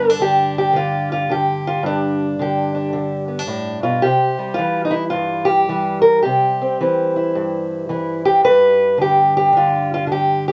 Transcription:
Already playing: G2 D3 B4
0.09 D4 A4
0.20 D3 G4
0.58 G4
0.73 D3 F4
1.12 F4
1.29 D3 G4
1.67 F4
1.83 G2 D4
2.39 D3 G4
2.75 D4
2.93 D3
3.28 B3
3.39 D4
3.47 A2
3.83 B2 F4
4.02 C3 G4
4.39 G3
4.54 F4
4.58 E3
4.85 D#4
4.91 E4
5.10 G2 F4
5.45 G4
5.69 E3 G3
6.02 A#4
6.22 C3 G4
6.61 C4
6.80 E3 C4
7.16 E4
7.35 G2
7.89 E3 E4
8.25 G4
8.43 G2 B4
8.98 D3 G4
9.37 G4
9.53 D3
9.57 F4
9.94 F4
10.07 D3
10.12 G4
10.48 G4

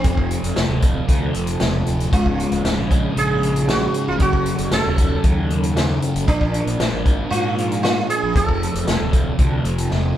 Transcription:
Already playing: C4
0.03 F1 F2 C3 F3 C4 A4, kick, closed hi-hat
0.17 kick
0.31 closed hi-hat
0.43 F1, closed hi-hat
0.56 F1 F2 C3 F3, snare, closed hi-hat
0.69 D1
0.82 C3 F3, kick, closed hi-hat
1.07 D2 F2 C3 F3, kick, closed hi-hat
1.33 F1 C3 F3, closed hi-hat
1.47 closed hi-hat
1.60 E1 F2 C3 F3, snare, closed hi-hat
1.86 D1, closed hi-hat
2.00 closed hi-hat
2.12 C#1 C#2 G#2 C#3 C#4 F4 G#4, kick, closed hi-hat
2.26 kick
2.40 closed hi-hat
2.51 C#1, closed hi-hat
2.64 C#1 C#2 G#2 C#3, snare, closed hi-hat
2.77 A#1
2.90 G#2 C#3, kick, closed hi-hat
3.15 A#1 C#2 G#2 C#3 G#4, closed hi-hat
3.42 G#2 C#3, closed hi-hat
3.56 closed hi-hat
3.68 C#2 G#2 C#3 F#4, snare, closed hi-hat
3.94 closed hi-hat
4.08 C#1 F4
4.19 F#1 F#2 C#3 F#3 C#4 F#4 A4, kick, closed hi-hat
4.33 kick
4.46 closed hi-hat
4.58 F#1, closed hi-hat
4.71 F#1 F#2 C#3 F#3 A4, snare, closed hi-hat
4.85 D#1
4.98 C#3 F#3, kick, closed hi-hat
5.24 D#2 F#2 C#3 F#3, kick, closed hi-hat
5.49 C#3 F#3, closed hi-hat
5.63 closed hi-hat
5.74 F#2 C#3 F#3, snare, closed hi-hat
6.02 closed hi-hat
6.15 F#1, closed hi-hat
6.27 A#1 A#2 F3 A#3 D4 A#4, kick, closed hi-hat
6.41 kick
6.54 closed hi-hat
6.67 A#1, closed hi-hat
6.79 A#1 A#2 F3 A#3, snare, closed hi-hat
6.93 G#1
7.05 F3 A#3, kick, closed hi-hat
7.30 G#2 A#2 F3 A#3 F4, closed hi-hat
7.57 F3 A#3, closed hi-hat
7.72 closed hi-hat
7.83 A#2 F3 A#3 F4, snare, closed hi-hat
8.10 G#4, closed hi-hat
8.23 A#1
8.34 F1 F2 C3 F3 C4 A4, kick, closed hi-hat
8.49 kick
8.63 closed hi-hat
8.75 F1, closed hi-hat
8.87 F1 F2 C3 F3, snare, closed hi-hat
9.01 D1
9.12 C3 F3, kick, closed hi-hat
9.39 D2 F2 C3 F3, kick, closed hi-hat
9.64 F1 C3 F3, closed hi-hat
9.78 closed hi-hat
9.90 E1 F2 C3 F3, snare

